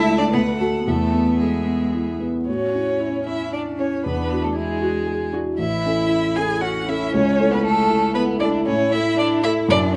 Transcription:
Already playing: grand piano C#2 D4 E4, viola A3, cello E4, violin E5 A5
0.08 grand piano E4
0.18 cello D4, violin D5
0.32 grand piano D2, cello B3, violin B4 F#5
0.58 cello A3, grand piano F#4 A4, violin A4
0.85 grand piano E2, cello A3, viola B3, violin A4 E5
1.13 grand piano B3
1.40 cello G#3, grand piano A3, violin G#4
1.67 grand piano B3
1.94 grand piano E4
2.20 grand piano B3
2.47 grand piano A2, violin C#4 C#5, cello C#4, viola F#4
2.74 grand piano C#4 E4
3.00 viola E4
3.25 viola C#4, grand piano C#4 E4, cello E4, violin E4 E5
3.52 cello D4, violin D4 D5
3.79 cello C#4, grand piano C#4 E4, violin C#4 C#5
4.04 grand piano E2, violin B3 B4, cello B3, viola D4
4.31 grand piano D4 E4 F#4
4.41 violin A3 A4, cello A3
4.56 violin G#3 G#4, cello G#3, viola E4
4.81 grand piano D4 E4 F#4, viola F#4
5.06 viola G#4
5.33 grand piano D4 E4 F#4, viola F#4
5.58 grand piano A1, viola E4, violin E4 E5, cello E4
5.85 grand piano C#4 E4 A4
6.36 grand piano C#4 E4 A4, violin G#4 G#5, cello G#4
6.61 viola C#4, cello F#4, violin F#4 F#5
6.87 grand piano C#4 E4 A4, cello E4, violin E4 E5
7.12 grand piano C#2, violin C#4 C#5, cello C#4
7.39 grand piano A3 E4 A4
7.51 violin B3 B4, cello B3
7.64 violin A3 A4, cello A3
7.89 grand piano A3 E4 A4
8.14 violin B3 B4, cello B3, viola E4
8.40 grand piano A3 E4 A4, violin D4 D5, cello D4
8.65 grand piano A2, violin C#4 C#5, cello C#4
8.92 grand piano A3 E4 A4, violin E4 E5, cello E4
9.17 violin D4 D5, cello D4
9.42 grand piano A3 E4 A4, violin E4 E5, cello E4
9.68 grand piano F#2, violin D4 D5, cello D4

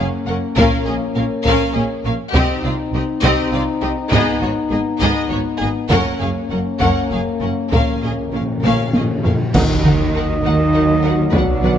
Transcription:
Already playing: french horn section A#3 C#4
0.27 double bass section F#1, cello section F#2, viola section C#4, violin section A#4 F#5
0.56 double bass section A#1, cello section A#2, timpani A#2, viola section C#4, violin section A#4 F5, taiko
0.86 double bass section A#1, cello section A#2, viola section C#4, violin section G#4 D#5
1.15 double bass section A#1, cello section A#2, viola section C#4, violin section A#4 F5
1.45 double bass section A#1, cello section A#2, viola section C#4, violin section A#4 F5, taiko
1.74 double bass section A#1, cello section A#2, viola section C#4, violin section G#4 D#5
2.05 double bass section A#1, cello section A#2, viola section C#4, violin section A#4 F5
2.34 double bass section C2, cello section C3, french horn section C4 D#4, viola section C4, violin section G4 D#5, taiko
2.63 double bass section C2, cello section C3, viola section C4, violin section F4 D5
2.93 double bass section C2, cello section C3, viola section C4, violin section G4 D#5
3.22 double bass section C2, cello section C3, viola section C4, violin section G4 D#5, taiko
3.52 double bass section C2, cello section C3, viola section C4, violin section F4 D5
3.82 double bass section C2, cello section C3, viola section C4, violin section G4 D#5
4.12 double bass section G#1, cello section G#2, viola section B3, french horn section B3, violin section G#4 D#5, taiko
4.41 double bass section G#1, cello section G#2, viola section B3, violin section F#4 C#5
4.70 double bass section G#1, cello section G#2, viola section B3, violin section G#4 D#5
5.00 double bass section G#1, cello section G#2, viola section B3, violin section G#4 D#5, taiko
5.30 double bass section G#1, cello section G#2, viola section B3, violin section F#4 C#5
5.60 double bass section G#1, cello section G#2, viola section B3, violin section G#4 D#5
5.90 double bass section F#1, cello section F#2, french horn section A#3 C#4, viola section C#4, violin section A#4 F#5, taiko
6.20 double bass section F#1, cello section F#2, viola section C#4, violin section G#4 F5
6.50 double bass section F#1, cello section F#2, viola section C#4, violin section A#4 F#5
6.80 double bass section F#1, cello section F#2, viola section C#4, violin section A#4 F#5, taiko
7.10 double bass section F#1, cello section F#2, viola section C#4, violin section G#4 F5
7.40 double bass section F#1, cello section F#2, viola section C#4, violin section A#4 F#5
7.71 double bass section A#1, timpani A#2, cello section A#2, viola section C#4, violin section A#4 F5, taiko
7.80 timpani A#2
7.88 timpani A#2
7.96 timpani A#2
8.02 double bass section A#1, cello section A#2, timpani A#2, viola section C#4, violin section G#4 D#5
8.11 timpani A#2
8.19 timpani A#2
8.27 timpani A#2
8.32 double bass section A#1, timpani A#2, cello section A#2, viola section C#4, violin section A#4 F5
8.41 timpani A#2
8.50 timpani A#2
8.57 timpani A#2
8.62 double bass section A#1, cello section A#2, timpani A#2, viola section C#4, violin section A#4 F5, taiko low-mid
8.73 timpani A#2
8.80 timpani A#2
8.88 timpani A#2
8.93 double bass section A#1, cello section A#2, timpani A#2, viola section C#4, violin section G#4 D#5, taiko high
9.04 timpani A#2
9.11 timpani A#2
9.18 timpani A#2, viola section C#4
9.23 double bass section A#1, cello section A#2, timpani A#2, violin section A#4 F5, taiko low
9.34 timpani A#2
9.41 timpani A#2
9.53 double bass section D#2, trombone section D#3 F#3, timpani D#3, cello section D#3, french horn section A#3 F#4, viola section D#4, violin section A#4 F#5, trumpet D#5, concert bass drum, taiko, crash, impact
9.82 viola section D#4, violin section A#4 F#5, taiko mid
10.14 viola section D#4, violin section A#4 F#5
10.44 double bass section D#2, cello section D#3, viola section D#4, violin section A#4 F#5
10.74 viola section D#4, violin section A#4 F#5
11.02 viola section D#4, violin section A#4 F#5
11.31 double bass section B1, cello section B2, french horn section B3, viola section D4, violin section B4, trumpet D5, taiko
11.36 trombone section B2, violin section F#5
11.63 viola section D4, violin section B4 F#5, taiko mid

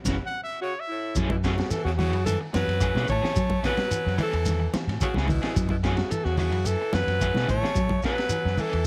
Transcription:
0.05 fingered electric bass F#1, clean electric guitar C#3 E3 F#3 C#4 E4 F#4, kick, snare, high conga, shekere
0.26 trumpet F#5
0.43 trumpet E5
0.62 tenor saxophone C#3, alto saxophone F#4, trumpet C#5
0.80 trumpet E5
0.88 tenor saxophone A2, alto saxophone E4
1.15 fingered electric bass F#2, clean electric guitar E3 F#3 A3 C#4 G#4, kick, ride bell, shekere
1.30 tenor saxophone B2, alto saxophone E4, muted clean electric guitar stroke, kick, high conga
1.44 tenor saxophone C#3, clean electric guitar E3 A3 C#4 G#4, alto saxophone F#4, kick, snare, ride bell, shekere
1.57 muted clean electric guitar stroke, snare, ride bell, high conga
1.70 clean electric guitar E3, tenor saxophone E3, alto saxophone A4, muted fingered electric bass stroke, snare, ride bell, shekere
1.84 fingered electric bass E2, tenor saxophone C#3, alto saxophone F#4, muted clean electric guitar stroke, snare
1.97 tenor saxophone C#3, clean electric guitar E3 A3 C#4 G#4, alto saxophone F#4, snare, open hi-hat, high conga, low conga, shekere
2.13 fingered electric bass F#2, muted clean electric guitar stroke, ride bell
2.26 clean electric guitar D#3, tenor saxophone E3, alto saxophone A4, muted clean electric guitar stroke, snare, ride bell, high conga, shekere
2.41 muted clean electric guitar stroke
2.53 fingered electric bass F#2, clean electric guitar E3, tenor saxophone F#3, alto saxophone B4, muted clean electric guitar stroke, snare, ride bell, high conga, shekere
2.68 fingered electric bass F#2, snare, ride bell
2.80 clean electric guitar E3 A3 C#4 G#4, kick, ride bell, shekere
2.95 fingered electric bass B2, clean electric guitar E3 A3 C#4 G#4, snare, high conga
3.08 fingered electric bass A2, clean electric guitar D#3, tenor saxophone A3, alto saxophone C#5, muted clean electric guitar stroke, kick, ride bell, low conga, shekere
3.22 clean electric guitar E3 C#4 G#4, muted fingered electric bass stroke, snare
3.36 clean electric guitar F#3, fingered electric bass F#3, kick, ride bell, shekere
3.50 muted clean electric guitar stroke, kick, high conga
3.63 clean electric guitar E3 A3 C#4 G#4, tenor saxophone F#3, alto saxophone B4, kick, snare, ride bell, low conga, shekere
3.77 muted clean electric guitar stroke, snare, ride bell, high conga
3.91 clean electric guitar E3, ride bell, shekere
4.05 fingered electric bass F#2, muted clean electric guitar stroke, snare
4.18 clean electric guitar E3 A3 C#4 G#4, tenor saxophone E3, snare, open hi-hat, high conga, low conga, shekere
4.22 alto saxophone A4
4.32 fingered electric bass E2, muted clean electric guitar stroke, ride bell
4.45 clean electric guitar D#3, muted clean electric guitar stroke, snare, ride bell, high conga, shekere
4.60 muted clean electric guitar stroke
4.73 clean electric guitar E3, muted clean electric guitar stroke, muted fingered electric bass stroke, snare, ride bell, high conga, shekere
4.87 fingered electric bass A2, snare, ride bell
5.01 tenor saxophone C#3, clean electric guitar E3 A3 C#4 G#4, alto saxophone F#4, muted fingered electric bass stroke, kick, ride bell, low conga, shekere
5.14 fingered electric bass C#2, clean electric guitar E3 A3 C#4 G#4, snare, high conga
5.28 tenor saxophone B2, clean electric guitar D#3, alto saxophone E4, muted clean electric guitar stroke, kick, open hi-hat, high conga, low conga, shekere
5.42 clean electric guitar E3 A3 C#4 G#4, snare, ride bell
5.56 fingered electric bass F#2, clean electric guitar F#3, kick, ride bell, shekere
5.69 tenor saxophone B2, alto saxophone E4, muted clean electric guitar stroke, kick, high conga
5.83 tenor saxophone C#3, clean electric guitar E3 A3 C#4 G#4, alto saxophone F#4, kick, snare, ride bell, shekere
5.97 muted clean electric guitar stroke, snare, ride bell, high conga
6.11 clean electric guitar E3, tenor saxophone E3, alto saxophone A4, muted fingered electric bass stroke, ride bell, shekere
6.24 fingered electric bass E2, alto saxophone F#4, muted clean electric guitar stroke, snare
6.29 tenor saxophone C#3
6.37 tenor saxophone C#3, clean electric guitar E3 A3 C#4 G#4, alto saxophone F#4, open hi-hat, high conga, low conga, shekere
6.52 fingered electric bass F#2, muted clean electric guitar stroke, ride bell
6.66 tenor saxophone E3, alto saxophone A4, muted clean electric guitar stroke, ride bell, shekere
6.81 muted clean electric guitar stroke
6.93 fingered electric bass F#2, clean electric guitar E3, tenor saxophone F#3, alto saxophone B4, muted clean electric guitar stroke, snare, ride bell, high conga, shekere
7.07 fingered electric bass F#2, snare, ride bell
7.20 clean electric guitar E3 A3 C#4 G#4, kick, ride bell, low conga, shekere
7.34 fingered electric bass B2, clean electric guitar E3 A3 C#4 G#4, snare, high conga
7.48 fingered electric bass A2, clean electric guitar D#3, tenor saxophone A3, alto saxophone C#5, muted clean electric guitar stroke, kick, ride bell, high conga, low conga, shekere
7.61 clean electric guitar E3 A3 C#4 G#4, muted fingered electric bass stroke, snare
7.75 clean electric guitar F#3, fingered electric bass F#3, kick, ride bell, shekere
7.89 muted clean electric guitar stroke, kick, high conga
8.02 clean electric guitar E3 A3 C#4 G#4, tenor saxophone F#3, alto saxophone B4, kick, snare, ride bell, shekere
8.18 muted clean electric guitar stroke, snare, ride bell
8.29 clean electric guitar E3, ride bell, shekere
8.45 fingered electric bass F#2, muted clean electric guitar stroke, snare
8.58 clean electric guitar E3 C#4 G#4, tenor saxophone E3, alto saxophone A4, open hi-hat, high conga, low conga, shekere
8.73 fingered electric bass E2, muted clean electric guitar stroke, ride bell

